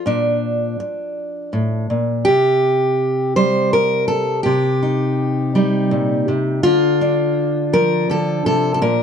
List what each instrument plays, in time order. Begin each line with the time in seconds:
Already playing: steel-string acoustic guitar F3
0.06 steel-string acoustic guitar A#2 D4
0.80 muted steel-string acoustic guitar stroke
1.53 steel-string acoustic guitar A2
1.90 steel-string acoustic guitar A#2
2.25 steel-string acoustic guitar C3 G4
3.36 steel-string acoustic guitar G3 C5
3.73 steel-string acoustic guitar A#4
4.08 steel-string acoustic guitar A4
4.43 steel-string acoustic guitar C3 G4
4.83 steel-string acoustic guitar D#4
5.55 steel-string acoustic guitar G3 D#4
5.91 steel-string acoustic guitar A#2
6.28 steel-string acoustic guitar C3
6.63 steel-string acoustic guitar D3 F4
7.01 steel-string acoustic guitar D4
7.73 steel-string acoustic guitar F3 A#4
8.09 steel-string acoustic guitar D3 A4
8.46 steel-string acoustic guitar C3 A4
8.74 steel-string acoustic guitar A4
8.82 steel-string acoustic guitar A#2 A#4